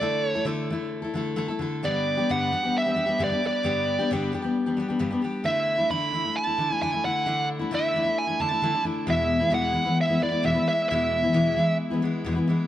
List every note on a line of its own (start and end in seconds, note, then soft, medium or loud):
0.00 0.36 D3 medium
0.00 0.35 A3 medium
0.00 0.34 E4 medium
0.00 0.34 A4 medium
0.00 0.25 D5 medium
0.25 0.44 C#5 medium
0.35 0.44 A3 medium
0.35 0.45 E4 medium
0.35 0.45 A4 medium
0.45 0.69 D3 medium
0.45 0.69 A3 medium
0.45 0.70 E4 loud
0.45 0.70 A4 loud
0.70 1.05 D3 medium
0.70 1.03 A3 medium
0.70 1.03 E4 medium
0.70 1.01 A4 medium
1.02 1.14 A3 soft
1.02 1.15 E4 medium
1.02 1.15 A4 medium
1.14 1.35 D3 medium
1.14 1.35 A3 medium
1.14 1.36 E4 medium
1.14 1.37 A4 medium
1.36 1.49 D3 medium
1.36 1.49 A3 medium
1.36 1.49 E4 medium
1.36 1.47 A4 medium
1.48 1.59 A3 medium
1.48 1.60 E4 medium
1.48 1.61 A4 medium
1.59 1.82 D3 medium
1.59 1.84 A3 medium
1.59 1.84 E4 medium
1.59 1.84 A4 medium
1.83 2.18 G2 medium
1.83 2.18 D3 medium
1.83 2.18 G3 medium
1.83 2.18 B3 medium
1.83 2.17 D4 medium
1.83 2.16 G4 medium
1.83 2.31 D5 loud
2.17 2.28 G3 medium
2.17 2.30 B3 medium
2.17 2.30 D4 medium
2.17 2.29 G4 medium
2.29 2.52 G2 medium
2.29 2.52 D3 medium
2.29 2.50 G3 medium
2.29 2.51 B3 medium
2.29 2.52 D4 medium
2.29 2.52 G4 medium
2.29 2.77 F#5 loud
2.51 2.63 G3 medium
2.51 2.64 B3 medium
2.51 2.63 D4 medium
2.51 2.62 G4 medium
2.63 2.86 G3 soft
2.63 2.86 B3 soft
2.63 2.85 D4 soft
2.63 2.84 G4 medium
2.78 3.23 E5 loud
2.85 2.93 G3 soft
2.85 2.95 B3 medium
2.85 2.95 D4 medium
2.85 2.96 G4 medium
2.94 3.07 G3 medium
2.94 3.07 B3 medium
2.94 3.06 D4 medium
2.94 3.05 G4 medium
3.06 3.18 G3 soft
3.06 3.19 B3 medium
3.06 3.19 D4 medium
3.06 3.19 G4 medium
3.18 3.30 G2 medium
3.18 3.31 D3 medium
3.18 3.31 G3 medium
3.18 3.32 B3 medium
3.18 3.31 D4 medium
3.18 3.29 G4 medium
3.24 3.43 D5 medium
3.30 3.41 G3 soft
3.30 3.42 B3 soft
3.30 3.43 D4 medium
3.30 3.42 G4 medium
3.42 3.64 G3 medium
3.42 3.63 B3 medium
3.42 3.65 D4 medium
3.42 3.64 G4 medium
3.47 4.09 D5 medium
3.63 3.98 G2 medium
3.63 3.99 D3 medium
3.63 3.99 G3 medium
3.63 3.99 B3 medium
3.63 3.99 D4 medium
3.63 3.98 G4 medium
3.99 4.10 G3 soft
3.99 4.12 B3 medium
3.99 4.11 D4 medium
3.99 4.10 G4 medium
4.11 4.33 G2 medium
4.11 4.33 D3 medium
4.11 4.31 G3 loud
4.11 4.32 B3 medium
4.11 4.33 D4 loud
4.11 4.33 G4 loud
4.32 4.44 G3 medium
4.32 4.43 B3 medium
4.32 4.43 D4 medium
4.32 4.41 G4 medium
4.42 4.67 G3 soft
4.42 4.66 B3 medium
4.42 4.66 D4 soft
4.42 4.65 G4 medium
4.66 4.76 G3 medium
4.66 4.77 B3 medium
4.66 4.78 D4 medium
4.66 4.78 G4 medium
4.77 4.89 G3 medium
4.77 4.89 B3 medium
4.77 4.88 D4 medium
4.77 4.87 G4 medium
4.88 4.99 G3 soft
4.88 4.99 B3 medium
4.88 5.00 D4 medium
4.88 5.00 G4 medium
4.99 5.12 G2 medium
4.99 5.12 D3 medium
4.99 5.12 G3 medium
4.99 5.11 B3 medium
4.99 5.11 D4 medium
4.99 5.09 G4 medium
5.11 5.20 G3 soft
5.11 5.21 B3 medium
5.11 5.23 D4 medium
5.11 5.23 G4 medium
5.22 5.43 G3 medium
5.22 5.44 B3 medium
5.22 5.44 D4 medium
5.22 5.45 G4 medium
5.44 5.79 D3 medium
5.44 5.79 A3 medium
5.44 5.78 D4 medium
5.44 5.76 E4 medium
5.44 5.88 E5 loud
5.78 5.90 A3 medium
5.78 5.90 D4 medium
5.78 5.90 E4 medium
5.90 6.11 D3 medium
5.90 6.12 A3 medium
5.90 6.13 D4 medium
5.90 6.14 E4 medium
5.90 6.38 B5 loud
6.12 6.24 D3 medium
6.12 6.25 A3 medium
6.12 6.24 D4 medium
6.12 6.23 E4 medium
6.24 6.48 A3 soft
6.24 6.47 D4 medium
6.24 6.46 E4 medium
6.37 6.82 A5 loud
6.47 6.58 A3 soft
6.47 6.58 D4 soft
6.47 6.59 E4 medium
6.58 6.70 D3 medium
6.58 6.71 A3 medium
6.58 6.71 D4 medium
6.58 6.69 E4 medium
6.70 6.82 A3 soft
6.70 6.82 D4 soft
6.70 6.82 E4 medium
6.82 6.93 D3 medium
6.82 6.94 A3 medium
6.82 6.94 D4 medium
6.82 6.93 E4 medium
6.82 7.03 G#5 medium
6.94 7.04 A3 soft
6.94 7.04 D4 soft
6.94 7.05 E4 medium
7.04 7.25 D3 medium
7.04 7.25 A3 medium
7.04 7.27 D4 medium
7.04 7.27 E4 medium
7.04 7.47 F#5 medium
7.26 7.61 D3 medium
7.26 7.60 A3 medium
7.26 7.60 D4 medium
7.26 7.58 E4 medium
7.59 7.70 A3 soft
7.59 7.71 D4 medium
7.59 7.72 E4 medium
7.71 7.92 D3 medium
7.71 7.94 A3 medium
7.71 7.95 D4 loud
7.71 7.96 E4 medium
7.71 8.20 E5 medium
7.94 8.06 D3 medium
7.94 8.07 A3 medium
7.94 8.05 D4 medium
7.94 8.04 E4 medium
8.05 8.29 A3 soft
8.05 8.28 D4 soft
8.05 8.26 E4 medium
8.18 8.41 G#5 loud
8.27 8.40 A3 soft
8.27 8.40 D4 soft
8.27 8.39 E4 medium
8.40 8.51 D3 medium
8.40 8.52 A3 medium
8.40 8.52 D4 medium
8.40 8.50 E4 medium
8.40 8.83 A5 loud
8.51 8.62 A3 soft
8.51 8.62 D4 medium
8.51 8.63 E4 medium
8.62 8.74 D3 medium
8.62 8.75 A3 medium
8.62 8.73 D4 medium
8.62 8.73 E4 medium
8.74 8.84 A3 soft
8.74 8.84 D4 soft
8.74 8.85 E4 medium
8.83 9.07 D3 medium
8.83 9.07 A3 medium
8.83 9.08 D4 medium
8.83 9.07 E4 medium
9.07 9.42 E2 medium
9.07 9.42 B2 medium
9.07 9.42 E3 medium
9.07 9.41 G#3 medium
9.07 9.40 B3 medium
9.07 9.38 E4 medium
9.07 9.52 E5 loud
9.40 9.49 E3 medium
9.40 9.50 G#3 medium
9.40 9.50 B3 medium
9.40 9.50 E4 medium
9.50 9.75 E2 medium
9.50 9.75 B2 medium
9.50 9.71 E3 medium
9.50 9.72 G#3 medium
9.50 9.73 B3 medium
9.50 9.73 E4 loud
9.54 9.96 F#5 loud
9.73 9.86 E3 medium
9.73 9.85 G#3 medium
9.73 9.84 B3 medium
9.73 9.83 E4 medium
9.84 10.09 E3 soft
9.84 10.08 G#3 soft
9.84 10.08 B3 medium
9.84 10.07 E4 medium
10.01 10.21 E5 loud
10.08 10.18 E3 soft
10.08 10.19 G#3 soft
10.08 10.20 B3 medium
10.08 10.21 E4 medium
10.19 10.32 E3 medium
10.19 10.31 G#3 medium
10.19 10.30 B3 medium
10.19 10.30 E4 medium
10.19 10.44 D5 medium
10.31 10.43 E3 soft
10.31 10.43 G#3 soft
10.31 10.43 B3 medium
10.31 10.43 E4 medium
10.42 10.55 E2 medium
10.42 10.55 B2 medium
10.42 10.55 E3 medium
10.42 10.55 G#3 medium
10.42 10.54 B3 medium
10.42 10.53 E4 medium
10.42 10.66 E5 medium
10.54 10.65 E3 soft
10.54 10.66 G#3 medium
10.54 10.67 B3 medium
10.54 10.66 E4 medium
10.67 10.90 E3 medium
10.67 10.90 G#3 medium
10.67 10.91 B3 medium
10.67 10.91 E4 medium
10.67 10.88 E5 medium
10.89 11.24 E2 medium
10.89 11.24 B2 medium
10.89 11.25 E3 medium
10.89 11.24 G#3 medium
10.89 11.23 B3 medium
10.89 11.21 E4 medium
10.89 11.77 E5 medium
11.23 11.33 E3 medium
11.23 11.33 G#3 soft
11.23 11.33 B3 medium
11.23 11.34 E4 medium
11.33 11.57 E2 medium
11.33 11.57 B2 medium
11.33 11.55 E3 medium
11.33 11.56 G#3 medium
11.33 11.57 B3 medium
11.33 11.58 E4 medium
11.56 11.91 E3 medium
11.56 11.92 G#3 medium
11.56 11.90 B3 medium
11.56 11.89 E4 medium
11.90 12.01 E3 soft
11.90 12.01 G#3 medium
11.90 12.02 B3 medium
11.90 12.03 E4 medium
12.02 12.25 E3 medium
12.02 12.25 G#3 medium
12.02 12.25 B3 medium
12.02 12.25 E4 medium
12.24 12.37 E2 medium
12.24 12.37 B2 medium
12.24 12.37 E3 medium
12.24 12.36 G#3 medium
12.24 12.35 B3 medium
12.24 12.33 E4 loud
12.35 12.46 E3 medium
12.35 12.48 G#3 medium
12.35 12.49 B3 medium
12.35 12.48 E4 medium
12.47 12.67 E3 medium
12.47 12.67 G#3 medium
12.47 12.67 B3 medium
12.47 12.67 E4 medium